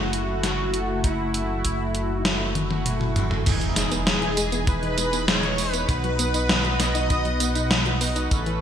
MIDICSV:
0, 0, Header, 1, 9, 480
1, 0, Start_track
1, 0, Key_signature, 4, "major"
1, 0, Tempo, 606061
1, 823, Time_signature, 4, 2, 24, 8
1, 6820, End_track
2, 0, Start_track
2, 0, Title_t, "Analog synth lead"
2, 0, Program_c, 0, 81
2, 0, Note_on_c, 0, 66, 97
2, 338, Note_off_c, 0, 66, 0
2, 343, Note_on_c, 0, 66, 95
2, 791, Note_off_c, 0, 66, 0
2, 824, Note_on_c, 0, 64, 99
2, 1726, Note_off_c, 0, 64, 0
2, 1726, Note_on_c, 0, 63, 99
2, 2232, Note_off_c, 0, 63, 0
2, 3231, Note_on_c, 0, 68, 87
2, 3676, Note_off_c, 0, 68, 0
2, 3708, Note_on_c, 0, 71, 100
2, 4154, Note_off_c, 0, 71, 0
2, 4188, Note_on_c, 0, 73, 108
2, 4529, Note_off_c, 0, 73, 0
2, 4529, Note_on_c, 0, 71, 108
2, 4667, Note_off_c, 0, 71, 0
2, 4667, Note_on_c, 0, 71, 104
2, 4899, Note_off_c, 0, 71, 0
2, 4904, Note_on_c, 0, 71, 109
2, 5386, Note_on_c, 0, 75, 116
2, 5398, Note_off_c, 0, 71, 0
2, 6105, Note_off_c, 0, 75, 0
2, 6820, End_track
3, 0, Start_track
3, 0, Title_t, "String machine"
3, 0, Program_c, 1, 50
3, 3226, Note_on_c, 1, 68, 88
3, 3673, Note_off_c, 1, 68, 0
3, 3707, Note_on_c, 1, 71, 101
3, 4154, Note_off_c, 1, 71, 0
3, 4185, Note_on_c, 1, 73, 106
3, 4526, Note_off_c, 1, 73, 0
3, 4526, Note_on_c, 1, 71, 106
3, 4632, Note_off_c, 1, 71, 0
3, 4665, Note_on_c, 1, 71, 107
3, 4887, Note_off_c, 1, 71, 0
3, 4905, Note_on_c, 1, 71, 115
3, 5352, Note_off_c, 1, 71, 0
3, 5385, Note_on_c, 1, 75, 118
3, 6072, Note_off_c, 1, 75, 0
3, 6820, End_track
4, 0, Start_track
4, 0, Title_t, "Analog synth pad"
4, 0, Program_c, 2, 89
4, 0, Note_on_c, 2, 57, 74
4, 0, Note_on_c, 2, 64, 71
4, 0, Note_on_c, 2, 66, 86
4, 2712, Note_off_c, 2, 57, 0
4, 2712, Note_off_c, 2, 64, 0
4, 2712, Note_off_c, 2, 66, 0
4, 2745, Note_on_c, 2, 68, 83
4, 2746, Note_on_c, 2, 52, 72
4, 2746, Note_on_c, 2, 75, 80
4, 4645, Note_off_c, 2, 68, 0
4, 4645, Note_off_c, 2, 75, 0
4, 4646, Note_off_c, 2, 52, 0
4, 4665, Note_on_c, 2, 59, 78
4, 4665, Note_on_c, 2, 71, 73
4, 4665, Note_on_c, 2, 75, 69
4, 4666, Note_on_c, 2, 78, 88
4, 6565, Note_off_c, 2, 59, 0
4, 6565, Note_off_c, 2, 75, 0
4, 6565, Note_off_c, 2, 78, 0
4, 6584, Note_on_c, 2, 57, 77
4, 6585, Note_on_c, 2, 69, 72
4, 6585, Note_on_c, 2, 73, 85
4, 6820, Note_off_c, 2, 57, 0
4, 6820, Note_off_c, 2, 69, 0
4, 6820, Note_off_c, 2, 71, 0
4, 6820, Note_off_c, 2, 73, 0
4, 6820, End_track
5, 0, Start_track
5, 0, Title_t, "Analog polysynth"
5, 0, Program_c, 3, 90
5, 0, Note_on_c, 3, 57, 80
5, 0, Note_on_c, 3, 64, 73
5, 0, Note_on_c, 3, 66, 92
5, 555, Note_off_c, 3, 57, 0
5, 555, Note_off_c, 3, 64, 0
5, 555, Note_off_c, 3, 66, 0
5, 584, Note_on_c, 3, 57, 80
5, 584, Note_on_c, 3, 64, 74
5, 584, Note_on_c, 3, 69, 85
5, 795, Note_off_c, 3, 57, 0
5, 795, Note_off_c, 3, 64, 0
5, 795, Note_off_c, 3, 69, 0
5, 824, Note_on_c, 3, 57, 81
5, 825, Note_on_c, 3, 64, 73
5, 825, Note_on_c, 3, 66, 91
5, 2120, Note_off_c, 3, 57, 0
5, 2120, Note_off_c, 3, 64, 0
5, 2120, Note_off_c, 3, 66, 0
5, 2142, Note_on_c, 3, 57, 97
5, 2143, Note_on_c, 3, 64, 91
5, 2143, Note_on_c, 3, 66, 105
5, 2714, Note_off_c, 3, 57, 0
5, 2714, Note_off_c, 3, 64, 0
5, 2714, Note_off_c, 3, 66, 0
5, 2743, Note_on_c, 3, 68, 89
5, 2744, Note_on_c, 3, 63, 81
5, 2744, Note_on_c, 3, 64, 75
5, 4394, Note_off_c, 3, 68, 0
5, 4395, Note_off_c, 3, 63, 0
5, 4395, Note_off_c, 3, 64, 0
5, 4423, Note_on_c, 3, 64, 74
5, 4424, Note_on_c, 3, 63, 80
5, 4424, Note_on_c, 3, 73, 90
5, 4634, Note_off_c, 3, 64, 0
5, 4635, Note_off_c, 3, 63, 0
5, 4635, Note_off_c, 3, 73, 0
5, 4664, Note_on_c, 3, 63, 82
5, 4664, Note_on_c, 3, 66, 73
5, 4664, Note_on_c, 3, 71, 90
5, 6315, Note_off_c, 3, 63, 0
5, 6315, Note_off_c, 3, 66, 0
5, 6315, Note_off_c, 3, 71, 0
5, 6343, Note_on_c, 3, 63, 81
5, 6343, Note_on_c, 3, 66, 77
5, 6343, Note_on_c, 3, 75, 91
5, 6554, Note_off_c, 3, 63, 0
5, 6554, Note_off_c, 3, 66, 0
5, 6554, Note_off_c, 3, 75, 0
5, 6583, Note_on_c, 3, 61, 83
5, 6583, Note_on_c, 3, 69, 77
5, 6584, Note_on_c, 3, 71, 89
5, 6820, Note_off_c, 3, 61, 0
5, 6820, Note_off_c, 3, 69, 0
5, 6820, Note_off_c, 3, 71, 0
5, 6820, End_track
6, 0, Start_track
6, 0, Title_t, "Synth arpeggio sound"
6, 0, Program_c, 4, 84
6, 2743, Note_on_c, 4, 51, 84
6, 2824, Note_off_c, 4, 51, 0
6, 2862, Note_on_c, 4, 52, 78
6, 2911, Note_off_c, 4, 52, 0
6, 2981, Note_on_c, 4, 56, 103
6, 3031, Note_off_c, 4, 56, 0
6, 3100, Note_on_c, 4, 59, 103
6, 3150, Note_off_c, 4, 59, 0
6, 3221, Note_on_c, 4, 51, 88
6, 3303, Note_off_c, 4, 51, 0
6, 3342, Note_on_c, 4, 52, 79
6, 3391, Note_off_c, 4, 52, 0
6, 3462, Note_on_c, 4, 56, 105
6, 3511, Note_off_c, 4, 56, 0
6, 3582, Note_on_c, 4, 59, 103
6, 3631, Note_off_c, 4, 59, 0
6, 3703, Note_on_c, 4, 51, 83
6, 3784, Note_off_c, 4, 51, 0
6, 3823, Note_on_c, 4, 52, 74
6, 3872, Note_off_c, 4, 52, 0
6, 3941, Note_on_c, 4, 56, 103
6, 3991, Note_off_c, 4, 56, 0
6, 4061, Note_on_c, 4, 59, 101
6, 4111, Note_off_c, 4, 59, 0
6, 4180, Note_on_c, 4, 51, 80
6, 4263, Note_off_c, 4, 51, 0
6, 4302, Note_on_c, 4, 52, 77
6, 4351, Note_off_c, 4, 52, 0
6, 4423, Note_on_c, 4, 56, 97
6, 4472, Note_off_c, 4, 56, 0
6, 4542, Note_on_c, 4, 59, 102
6, 4592, Note_off_c, 4, 59, 0
6, 4663, Note_on_c, 4, 51, 85
6, 4744, Note_off_c, 4, 51, 0
6, 4783, Note_on_c, 4, 54, 77
6, 4832, Note_off_c, 4, 54, 0
6, 4903, Note_on_c, 4, 59, 102
6, 4952, Note_off_c, 4, 59, 0
6, 5024, Note_on_c, 4, 63, 104
6, 5073, Note_off_c, 4, 63, 0
6, 5144, Note_on_c, 4, 51, 85
6, 5225, Note_off_c, 4, 51, 0
6, 5263, Note_on_c, 4, 54, 78
6, 5312, Note_off_c, 4, 54, 0
6, 5384, Note_on_c, 4, 59, 105
6, 5432, Note_off_c, 4, 59, 0
6, 5503, Note_on_c, 4, 63, 103
6, 5552, Note_off_c, 4, 63, 0
6, 5625, Note_on_c, 4, 51, 87
6, 5705, Note_off_c, 4, 51, 0
6, 5745, Note_on_c, 4, 54, 73
6, 5793, Note_off_c, 4, 54, 0
6, 5864, Note_on_c, 4, 59, 102
6, 5912, Note_off_c, 4, 59, 0
6, 5984, Note_on_c, 4, 63, 102
6, 6033, Note_off_c, 4, 63, 0
6, 6106, Note_on_c, 4, 51, 80
6, 6186, Note_off_c, 4, 51, 0
6, 6225, Note_on_c, 4, 54, 76
6, 6273, Note_off_c, 4, 54, 0
6, 6344, Note_on_c, 4, 59, 100
6, 6392, Note_off_c, 4, 59, 0
6, 6463, Note_on_c, 4, 63, 104
6, 6512, Note_off_c, 4, 63, 0
6, 6584, Note_on_c, 4, 49, 86
6, 6665, Note_off_c, 4, 49, 0
6, 6706, Note_on_c, 4, 52, 79
6, 6753, Note_off_c, 4, 52, 0
6, 6820, End_track
7, 0, Start_track
7, 0, Title_t, "Detuned saw bass"
7, 0, Program_c, 5, 39
7, 0, Note_on_c, 5, 30, 91
7, 2719, Note_off_c, 5, 30, 0
7, 2747, Note_on_c, 5, 28, 87
7, 4641, Note_off_c, 5, 28, 0
7, 4662, Note_on_c, 5, 35, 90
7, 6559, Note_off_c, 5, 35, 0
7, 6585, Note_on_c, 5, 33, 92
7, 6820, Note_off_c, 5, 33, 0
7, 6820, End_track
8, 0, Start_track
8, 0, Title_t, "Impact"
8, 0, Program_c, 6, 103
8, 2742, Note_on_c, 6, 60, 77
8, 4663, Note_off_c, 6, 60, 0
8, 6820, End_track
9, 0, Start_track
9, 0, Title_t, "Drums"
9, 104, Note_on_c, 9, 42, 64
9, 183, Note_off_c, 9, 42, 0
9, 344, Note_on_c, 9, 38, 57
9, 344, Note_on_c, 9, 42, 90
9, 423, Note_off_c, 9, 38, 0
9, 423, Note_off_c, 9, 42, 0
9, 583, Note_on_c, 9, 42, 66
9, 663, Note_off_c, 9, 42, 0
9, 824, Note_on_c, 9, 36, 105
9, 824, Note_on_c, 9, 42, 92
9, 903, Note_off_c, 9, 36, 0
9, 903, Note_off_c, 9, 42, 0
9, 1063, Note_on_c, 9, 42, 69
9, 1143, Note_off_c, 9, 42, 0
9, 1303, Note_on_c, 9, 42, 93
9, 1304, Note_on_c, 9, 36, 57
9, 1382, Note_off_c, 9, 42, 0
9, 1383, Note_off_c, 9, 36, 0
9, 1541, Note_on_c, 9, 42, 66
9, 1620, Note_off_c, 9, 42, 0
9, 1782, Note_on_c, 9, 38, 113
9, 1782, Note_on_c, 9, 42, 92
9, 1861, Note_off_c, 9, 38, 0
9, 1861, Note_off_c, 9, 42, 0
9, 2022, Note_on_c, 9, 42, 66
9, 2022, Note_on_c, 9, 48, 60
9, 2101, Note_off_c, 9, 42, 0
9, 2101, Note_off_c, 9, 48, 0
9, 2143, Note_on_c, 9, 48, 60
9, 2222, Note_off_c, 9, 48, 0
9, 2263, Note_on_c, 9, 42, 92
9, 2263, Note_on_c, 9, 47, 76
9, 2342, Note_off_c, 9, 42, 0
9, 2342, Note_off_c, 9, 47, 0
9, 2383, Note_on_c, 9, 47, 73
9, 2462, Note_off_c, 9, 47, 0
9, 2503, Note_on_c, 9, 42, 68
9, 2503, Note_on_c, 9, 45, 96
9, 2582, Note_off_c, 9, 42, 0
9, 2582, Note_off_c, 9, 45, 0
9, 2621, Note_on_c, 9, 45, 88
9, 2700, Note_off_c, 9, 45, 0
9, 2743, Note_on_c, 9, 42, 55
9, 2743, Note_on_c, 9, 49, 105
9, 2743, Note_on_c, 9, 54, 29
9, 2747, Note_on_c, 9, 36, 121
9, 2822, Note_off_c, 9, 42, 0
9, 2822, Note_off_c, 9, 49, 0
9, 2822, Note_off_c, 9, 54, 0
9, 2827, Note_off_c, 9, 36, 0
9, 2862, Note_on_c, 9, 42, 28
9, 2941, Note_off_c, 9, 42, 0
9, 2980, Note_on_c, 9, 38, 62
9, 2980, Note_on_c, 9, 42, 96
9, 2980, Note_on_c, 9, 54, 65
9, 3060, Note_off_c, 9, 38, 0
9, 3060, Note_off_c, 9, 42, 0
9, 3060, Note_off_c, 9, 54, 0
9, 3101, Note_on_c, 9, 42, 54
9, 3101, Note_on_c, 9, 54, 37
9, 3180, Note_off_c, 9, 42, 0
9, 3180, Note_off_c, 9, 54, 0
9, 3222, Note_on_c, 9, 38, 118
9, 3222, Note_on_c, 9, 42, 55
9, 3222, Note_on_c, 9, 54, 28
9, 3301, Note_off_c, 9, 38, 0
9, 3301, Note_off_c, 9, 42, 0
9, 3301, Note_off_c, 9, 54, 0
9, 3342, Note_on_c, 9, 42, 27
9, 3422, Note_off_c, 9, 42, 0
9, 3462, Note_on_c, 9, 42, 101
9, 3462, Note_on_c, 9, 54, 69
9, 3541, Note_off_c, 9, 42, 0
9, 3541, Note_off_c, 9, 54, 0
9, 3582, Note_on_c, 9, 42, 54
9, 3582, Note_on_c, 9, 54, 39
9, 3661, Note_off_c, 9, 42, 0
9, 3661, Note_off_c, 9, 54, 0
9, 3701, Note_on_c, 9, 36, 121
9, 3702, Note_on_c, 9, 42, 54
9, 3702, Note_on_c, 9, 54, 29
9, 3780, Note_off_c, 9, 36, 0
9, 3781, Note_off_c, 9, 42, 0
9, 3781, Note_off_c, 9, 54, 0
9, 3823, Note_on_c, 9, 42, 27
9, 3903, Note_off_c, 9, 42, 0
9, 3942, Note_on_c, 9, 42, 97
9, 3942, Note_on_c, 9, 54, 66
9, 4021, Note_off_c, 9, 42, 0
9, 4021, Note_off_c, 9, 54, 0
9, 4063, Note_on_c, 9, 42, 57
9, 4063, Note_on_c, 9, 54, 39
9, 4142, Note_off_c, 9, 42, 0
9, 4142, Note_off_c, 9, 54, 0
9, 4183, Note_on_c, 9, 38, 123
9, 4183, Note_on_c, 9, 42, 58
9, 4183, Note_on_c, 9, 54, 29
9, 4262, Note_off_c, 9, 38, 0
9, 4262, Note_off_c, 9, 42, 0
9, 4262, Note_off_c, 9, 54, 0
9, 4302, Note_on_c, 9, 42, 28
9, 4382, Note_off_c, 9, 42, 0
9, 4422, Note_on_c, 9, 46, 80
9, 4422, Note_on_c, 9, 54, 69
9, 4501, Note_off_c, 9, 46, 0
9, 4501, Note_off_c, 9, 54, 0
9, 4542, Note_on_c, 9, 42, 56
9, 4542, Note_on_c, 9, 54, 38
9, 4622, Note_off_c, 9, 42, 0
9, 4622, Note_off_c, 9, 54, 0
9, 4663, Note_on_c, 9, 36, 116
9, 4663, Note_on_c, 9, 42, 56
9, 4663, Note_on_c, 9, 54, 28
9, 4742, Note_off_c, 9, 36, 0
9, 4742, Note_off_c, 9, 42, 0
9, 4742, Note_off_c, 9, 54, 0
9, 4783, Note_on_c, 9, 42, 28
9, 4862, Note_off_c, 9, 42, 0
9, 4903, Note_on_c, 9, 42, 101
9, 4903, Note_on_c, 9, 54, 70
9, 4982, Note_off_c, 9, 42, 0
9, 4982, Note_off_c, 9, 54, 0
9, 5023, Note_on_c, 9, 42, 57
9, 5023, Note_on_c, 9, 54, 39
9, 5102, Note_off_c, 9, 42, 0
9, 5102, Note_off_c, 9, 54, 0
9, 5143, Note_on_c, 9, 38, 126
9, 5143, Note_on_c, 9, 42, 55
9, 5143, Note_on_c, 9, 54, 28
9, 5223, Note_off_c, 9, 38, 0
9, 5223, Note_off_c, 9, 42, 0
9, 5223, Note_off_c, 9, 54, 0
9, 5263, Note_on_c, 9, 42, 27
9, 5343, Note_off_c, 9, 42, 0
9, 5383, Note_on_c, 9, 38, 63
9, 5383, Note_on_c, 9, 42, 99
9, 5383, Note_on_c, 9, 54, 67
9, 5462, Note_off_c, 9, 38, 0
9, 5462, Note_off_c, 9, 42, 0
9, 5462, Note_off_c, 9, 54, 0
9, 5504, Note_on_c, 9, 42, 54
9, 5504, Note_on_c, 9, 54, 38
9, 5583, Note_off_c, 9, 42, 0
9, 5583, Note_off_c, 9, 54, 0
9, 5624, Note_on_c, 9, 42, 57
9, 5624, Note_on_c, 9, 54, 29
9, 5625, Note_on_c, 9, 36, 110
9, 5703, Note_off_c, 9, 42, 0
9, 5703, Note_off_c, 9, 54, 0
9, 5704, Note_off_c, 9, 36, 0
9, 5743, Note_on_c, 9, 42, 28
9, 5822, Note_off_c, 9, 42, 0
9, 5863, Note_on_c, 9, 42, 98
9, 5863, Note_on_c, 9, 54, 67
9, 5942, Note_off_c, 9, 42, 0
9, 5942, Note_off_c, 9, 54, 0
9, 5983, Note_on_c, 9, 42, 55
9, 5983, Note_on_c, 9, 54, 39
9, 6062, Note_off_c, 9, 42, 0
9, 6062, Note_off_c, 9, 54, 0
9, 6104, Note_on_c, 9, 38, 122
9, 6104, Note_on_c, 9, 42, 56
9, 6104, Note_on_c, 9, 54, 29
9, 6183, Note_off_c, 9, 38, 0
9, 6183, Note_off_c, 9, 42, 0
9, 6183, Note_off_c, 9, 54, 0
9, 6223, Note_on_c, 9, 42, 27
9, 6302, Note_off_c, 9, 42, 0
9, 6343, Note_on_c, 9, 46, 79
9, 6343, Note_on_c, 9, 54, 70
9, 6423, Note_off_c, 9, 46, 0
9, 6423, Note_off_c, 9, 54, 0
9, 6463, Note_on_c, 9, 42, 59
9, 6463, Note_on_c, 9, 54, 39
9, 6542, Note_off_c, 9, 42, 0
9, 6542, Note_off_c, 9, 54, 0
9, 6584, Note_on_c, 9, 42, 53
9, 6584, Note_on_c, 9, 54, 29
9, 6585, Note_on_c, 9, 36, 112
9, 6663, Note_off_c, 9, 42, 0
9, 6663, Note_off_c, 9, 54, 0
9, 6664, Note_off_c, 9, 36, 0
9, 6703, Note_on_c, 9, 42, 27
9, 6782, Note_off_c, 9, 42, 0
9, 6820, End_track
0, 0, End_of_file